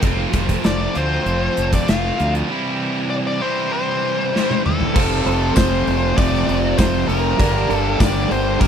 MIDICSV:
0, 0, Header, 1, 7, 480
1, 0, Start_track
1, 0, Key_signature, -1, "major"
1, 0, Tempo, 612870
1, 27, Time_signature, 4, 2, 24, 8
1, 6795, End_track
2, 0, Start_track
2, 0, Title_t, "Lead electric guitar"
2, 0, Program_c, 0, 29
2, 514, Note_on_c, 0, 74, 83
2, 628, Note_off_c, 0, 74, 0
2, 637, Note_on_c, 0, 74, 84
2, 758, Note_off_c, 0, 74, 0
2, 764, Note_on_c, 0, 72, 85
2, 1329, Note_off_c, 0, 72, 0
2, 1368, Note_on_c, 0, 74, 88
2, 1480, Note_on_c, 0, 77, 100
2, 1485, Note_off_c, 0, 74, 0
2, 1814, Note_off_c, 0, 77, 0
2, 2427, Note_on_c, 0, 74, 104
2, 2467, Note_off_c, 0, 74, 0
2, 2561, Note_on_c, 0, 74, 100
2, 2676, Note_off_c, 0, 74, 0
2, 2676, Note_on_c, 0, 72, 98
2, 2912, Note_off_c, 0, 72, 0
2, 2921, Note_on_c, 0, 72, 85
2, 3609, Note_off_c, 0, 72, 0
2, 3651, Note_on_c, 0, 69, 94
2, 4353, Note_off_c, 0, 69, 0
2, 4356, Note_on_c, 0, 72, 96
2, 4828, Note_on_c, 0, 74, 98
2, 4850, Note_off_c, 0, 72, 0
2, 5307, Note_on_c, 0, 72, 107
2, 5325, Note_off_c, 0, 74, 0
2, 5545, Note_off_c, 0, 72, 0
2, 5548, Note_on_c, 0, 70, 98
2, 6049, Note_off_c, 0, 70, 0
2, 6049, Note_on_c, 0, 69, 98
2, 6266, Note_on_c, 0, 74, 98
2, 6287, Note_off_c, 0, 69, 0
2, 6512, Note_off_c, 0, 74, 0
2, 6515, Note_on_c, 0, 72, 92
2, 6741, Note_off_c, 0, 72, 0
2, 6744, Note_on_c, 0, 70, 78
2, 6795, Note_off_c, 0, 70, 0
2, 6795, End_track
3, 0, Start_track
3, 0, Title_t, "Honky-tonk piano"
3, 0, Program_c, 1, 3
3, 3872, Note_on_c, 1, 65, 74
3, 3877, Note_on_c, 1, 69, 68
3, 3881, Note_on_c, 1, 72, 82
3, 4067, Note_off_c, 1, 65, 0
3, 4070, Note_off_c, 1, 69, 0
3, 4072, Note_off_c, 1, 72, 0
3, 4119, Note_on_c, 1, 72, 73
3, 4120, Note_on_c, 1, 65, 70
3, 4121, Note_on_c, 1, 69, 68
3, 4884, Note_off_c, 1, 72, 0
3, 4885, Note_off_c, 1, 65, 0
3, 4886, Note_off_c, 1, 69, 0
3, 5781, Note_on_c, 1, 67, 72
3, 5783, Note_on_c, 1, 70, 72
3, 5787, Note_on_c, 1, 74, 79
3, 5977, Note_off_c, 1, 67, 0
3, 5978, Note_off_c, 1, 70, 0
3, 5980, Note_off_c, 1, 74, 0
3, 6022, Note_on_c, 1, 67, 71
3, 6025, Note_on_c, 1, 70, 64
3, 6026, Note_on_c, 1, 74, 75
3, 6788, Note_off_c, 1, 67, 0
3, 6790, Note_off_c, 1, 70, 0
3, 6790, Note_off_c, 1, 74, 0
3, 6795, End_track
4, 0, Start_track
4, 0, Title_t, "Distorted electric guitar"
4, 0, Program_c, 2, 30
4, 23, Note_on_c, 2, 53, 84
4, 33, Note_on_c, 2, 57, 88
4, 39, Note_on_c, 2, 60, 90
4, 46, Note_on_c, 2, 65, 83
4, 731, Note_off_c, 2, 65, 0
4, 735, Note_off_c, 2, 53, 0
4, 740, Note_off_c, 2, 57, 0
4, 740, Note_on_c, 2, 65, 81
4, 747, Note_off_c, 2, 60, 0
4, 750, Note_on_c, 2, 60, 76
4, 759, Note_on_c, 2, 57, 71
4, 769, Note_on_c, 2, 53, 69
4, 1451, Note_off_c, 2, 53, 0
4, 1455, Note_off_c, 2, 65, 0
4, 1461, Note_on_c, 2, 53, 82
4, 1465, Note_off_c, 2, 57, 0
4, 1474, Note_on_c, 2, 57, 80
4, 1479, Note_off_c, 2, 60, 0
4, 1482, Note_on_c, 2, 60, 74
4, 1488, Note_on_c, 2, 65, 81
4, 1935, Note_off_c, 2, 53, 0
4, 1942, Note_off_c, 2, 57, 0
4, 1946, Note_on_c, 2, 48, 84
4, 1949, Note_off_c, 2, 65, 0
4, 1955, Note_on_c, 2, 52, 88
4, 1956, Note_on_c, 2, 55, 103
4, 1964, Note_off_c, 2, 60, 0
4, 1967, Note_on_c, 2, 60, 92
4, 1970, Note_on_c, 2, 64, 95
4, 2659, Note_off_c, 2, 48, 0
4, 2660, Note_off_c, 2, 64, 0
4, 2663, Note_off_c, 2, 52, 0
4, 2664, Note_off_c, 2, 55, 0
4, 2669, Note_on_c, 2, 64, 84
4, 2670, Note_off_c, 2, 60, 0
4, 2678, Note_on_c, 2, 60, 85
4, 2686, Note_on_c, 2, 55, 76
4, 2690, Note_on_c, 2, 52, 77
4, 2695, Note_on_c, 2, 48, 68
4, 3380, Note_off_c, 2, 64, 0
4, 3381, Note_off_c, 2, 48, 0
4, 3385, Note_off_c, 2, 60, 0
4, 3388, Note_off_c, 2, 52, 0
4, 3389, Note_off_c, 2, 55, 0
4, 3390, Note_on_c, 2, 48, 74
4, 3398, Note_on_c, 2, 52, 75
4, 3404, Note_on_c, 2, 55, 82
4, 3414, Note_on_c, 2, 60, 77
4, 3418, Note_on_c, 2, 64, 75
4, 3860, Note_off_c, 2, 48, 0
4, 3864, Note_off_c, 2, 52, 0
4, 3867, Note_off_c, 2, 55, 0
4, 3872, Note_off_c, 2, 60, 0
4, 3874, Note_off_c, 2, 64, 0
4, 3875, Note_on_c, 2, 41, 91
4, 3883, Note_on_c, 2, 48, 90
4, 3891, Note_on_c, 2, 53, 83
4, 3894, Note_on_c, 2, 57, 96
4, 3901, Note_on_c, 2, 60, 100
4, 4820, Note_off_c, 2, 41, 0
4, 4824, Note_off_c, 2, 48, 0
4, 4828, Note_off_c, 2, 53, 0
4, 4829, Note_off_c, 2, 57, 0
4, 4832, Note_on_c, 2, 41, 74
4, 4833, Note_off_c, 2, 60, 0
4, 4836, Note_on_c, 2, 48, 76
4, 4847, Note_on_c, 2, 53, 77
4, 4852, Note_on_c, 2, 57, 85
4, 4855, Note_on_c, 2, 60, 79
4, 5775, Note_off_c, 2, 41, 0
4, 5777, Note_off_c, 2, 48, 0
4, 5779, Note_on_c, 2, 43, 85
4, 5783, Note_off_c, 2, 53, 0
4, 5785, Note_off_c, 2, 57, 0
4, 5787, Note_off_c, 2, 60, 0
4, 5788, Note_on_c, 2, 50, 99
4, 5792, Note_on_c, 2, 55, 97
4, 5800, Note_on_c, 2, 58, 106
4, 5804, Note_on_c, 2, 62, 103
4, 6719, Note_off_c, 2, 43, 0
4, 6726, Note_off_c, 2, 50, 0
4, 6728, Note_on_c, 2, 43, 73
4, 6731, Note_off_c, 2, 55, 0
4, 6734, Note_off_c, 2, 58, 0
4, 6735, Note_on_c, 2, 50, 71
4, 6742, Note_on_c, 2, 55, 77
4, 6748, Note_on_c, 2, 58, 84
4, 6753, Note_off_c, 2, 62, 0
4, 6756, Note_on_c, 2, 62, 84
4, 6795, Note_off_c, 2, 43, 0
4, 6795, Note_off_c, 2, 50, 0
4, 6795, Note_off_c, 2, 55, 0
4, 6795, Note_off_c, 2, 58, 0
4, 6795, Note_off_c, 2, 62, 0
4, 6795, End_track
5, 0, Start_track
5, 0, Title_t, "Distorted electric guitar"
5, 0, Program_c, 3, 30
5, 5542, Note_on_c, 3, 53, 91
5, 5555, Note_on_c, 3, 48, 78
5, 5559, Note_on_c, 3, 41, 76
5, 5772, Note_off_c, 3, 53, 0
5, 5776, Note_off_c, 3, 41, 0
5, 5778, Note_off_c, 3, 48, 0
5, 6795, End_track
6, 0, Start_track
6, 0, Title_t, "Fingered electric bass"
6, 0, Program_c, 4, 33
6, 26, Note_on_c, 4, 29, 94
6, 195, Note_off_c, 4, 29, 0
6, 266, Note_on_c, 4, 29, 90
6, 435, Note_off_c, 4, 29, 0
6, 507, Note_on_c, 4, 29, 85
6, 677, Note_off_c, 4, 29, 0
6, 753, Note_on_c, 4, 38, 81
6, 921, Note_off_c, 4, 38, 0
6, 986, Note_on_c, 4, 29, 88
6, 1157, Note_off_c, 4, 29, 0
6, 1235, Note_on_c, 4, 29, 88
6, 1403, Note_off_c, 4, 29, 0
6, 1481, Note_on_c, 4, 29, 89
6, 1647, Note_off_c, 4, 29, 0
6, 1725, Note_on_c, 4, 38, 90
6, 1890, Note_off_c, 4, 38, 0
6, 3884, Note_on_c, 4, 29, 90
6, 4083, Note_off_c, 4, 29, 0
6, 4118, Note_on_c, 4, 29, 83
6, 4319, Note_off_c, 4, 29, 0
6, 4364, Note_on_c, 4, 29, 85
6, 4562, Note_off_c, 4, 29, 0
6, 4599, Note_on_c, 4, 29, 88
6, 4799, Note_off_c, 4, 29, 0
6, 4842, Note_on_c, 4, 29, 86
6, 5040, Note_off_c, 4, 29, 0
6, 5078, Note_on_c, 4, 29, 88
6, 5277, Note_off_c, 4, 29, 0
6, 5317, Note_on_c, 4, 29, 83
6, 5516, Note_off_c, 4, 29, 0
6, 5551, Note_on_c, 4, 29, 89
6, 5752, Note_off_c, 4, 29, 0
6, 5792, Note_on_c, 4, 31, 97
6, 5992, Note_off_c, 4, 31, 0
6, 6024, Note_on_c, 4, 31, 87
6, 6227, Note_off_c, 4, 31, 0
6, 6266, Note_on_c, 4, 31, 90
6, 6467, Note_off_c, 4, 31, 0
6, 6508, Note_on_c, 4, 31, 88
6, 6707, Note_off_c, 4, 31, 0
6, 6743, Note_on_c, 4, 31, 93
6, 6795, Note_off_c, 4, 31, 0
6, 6795, End_track
7, 0, Start_track
7, 0, Title_t, "Drums"
7, 15, Note_on_c, 9, 42, 62
7, 21, Note_on_c, 9, 36, 104
7, 93, Note_off_c, 9, 42, 0
7, 100, Note_off_c, 9, 36, 0
7, 258, Note_on_c, 9, 42, 62
7, 263, Note_on_c, 9, 36, 110
7, 337, Note_off_c, 9, 42, 0
7, 341, Note_off_c, 9, 36, 0
7, 384, Note_on_c, 9, 36, 73
7, 384, Note_on_c, 9, 42, 64
7, 462, Note_off_c, 9, 42, 0
7, 463, Note_off_c, 9, 36, 0
7, 501, Note_on_c, 9, 42, 62
7, 508, Note_on_c, 9, 38, 106
7, 580, Note_off_c, 9, 42, 0
7, 586, Note_off_c, 9, 38, 0
7, 746, Note_on_c, 9, 42, 62
7, 824, Note_off_c, 9, 42, 0
7, 989, Note_on_c, 9, 42, 60
7, 1067, Note_off_c, 9, 42, 0
7, 1230, Note_on_c, 9, 42, 66
7, 1308, Note_off_c, 9, 42, 0
7, 1350, Note_on_c, 9, 42, 63
7, 1353, Note_on_c, 9, 36, 78
7, 1428, Note_off_c, 9, 42, 0
7, 1431, Note_off_c, 9, 36, 0
7, 1473, Note_on_c, 9, 42, 68
7, 1480, Note_on_c, 9, 38, 107
7, 1552, Note_off_c, 9, 42, 0
7, 1558, Note_off_c, 9, 38, 0
7, 1720, Note_on_c, 9, 42, 67
7, 1727, Note_on_c, 9, 38, 33
7, 1799, Note_off_c, 9, 42, 0
7, 1805, Note_off_c, 9, 38, 0
7, 1839, Note_on_c, 9, 42, 66
7, 1918, Note_off_c, 9, 42, 0
7, 3414, Note_on_c, 9, 38, 60
7, 3493, Note_off_c, 9, 38, 0
7, 3529, Note_on_c, 9, 48, 62
7, 3607, Note_off_c, 9, 48, 0
7, 3649, Note_on_c, 9, 45, 88
7, 3727, Note_off_c, 9, 45, 0
7, 3764, Note_on_c, 9, 43, 83
7, 3842, Note_off_c, 9, 43, 0
7, 3883, Note_on_c, 9, 36, 112
7, 3883, Note_on_c, 9, 49, 123
7, 3961, Note_off_c, 9, 36, 0
7, 3962, Note_off_c, 9, 49, 0
7, 4124, Note_on_c, 9, 46, 59
7, 4203, Note_off_c, 9, 46, 0
7, 4353, Note_on_c, 9, 54, 106
7, 4361, Note_on_c, 9, 36, 120
7, 4361, Note_on_c, 9, 46, 77
7, 4367, Note_on_c, 9, 38, 120
7, 4432, Note_off_c, 9, 54, 0
7, 4439, Note_off_c, 9, 36, 0
7, 4439, Note_off_c, 9, 46, 0
7, 4446, Note_off_c, 9, 38, 0
7, 4600, Note_on_c, 9, 46, 64
7, 4679, Note_off_c, 9, 46, 0
7, 4839, Note_on_c, 9, 36, 111
7, 4840, Note_on_c, 9, 46, 76
7, 4917, Note_off_c, 9, 36, 0
7, 4918, Note_off_c, 9, 46, 0
7, 4972, Note_on_c, 9, 38, 33
7, 5050, Note_off_c, 9, 38, 0
7, 5082, Note_on_c, 9, 46, 67
7, 5161, Note_off_c, 9, 46, 0
7, 5312, Note_on_c, 9, 54, 105
7, 5316, Note_on_c, 9, 36, 112
7, 5319, Note_on_c, 9, 46, 88
7, 5325, Note_on_c, 9, 38, 118
7, 5391, Note_off_c, 9, 54, 0
7, 5394, Note_off_c, 9, 36, 0
7, 5397, Note_off_c, 9, 46, 0
7, 5404, Note_off_c, 9, 38, 0
7, 5555, Note_on_c, 9, 46, 67
7, 5633, Note_off_c, 9, 46, 0
7, 5792, Note_on_c, 9, 36, 116
7, 5798, Note_on_c, 9, 46, 88
7, 5870, Note_off_c, 9, 36, 0
7, 5876, Note_off_c, 9, 46, 0
7, 6035, Note_on_c, 9, 46, 64
7, 6113, Note_off_c, 9, 46, 0
7, 6268, Note_on_c, 9, 36, 115
7, 6268, Note_on_c, 9, 46, 90
7, 6270, Note_on_c, 9, 54, 94
7, 6275, Note_on_c, 9, 38, 109
7, 6346, Note_off_c, 9, 36, 0
7, 6347, Note_off_c, 9, 46, 0
7, 6348, Note_off_c, 9, 54, 0
7, 6353, Note_off_c, 9, 38, 0
7, 6511, Note_on_c, 9, 46, 65
7, 6589, Note_off_c, 9, 46, 0
7, 6742, Note_on_c, 9, 46, 84
7, 6743, Note_on_c, 9, 36, 108
7, 6795, Note_off_c, 9, 36, 0
7, 6795, Note_off_c, 9, 46, 0
7, 6795, End_track
0, 0, End_of_file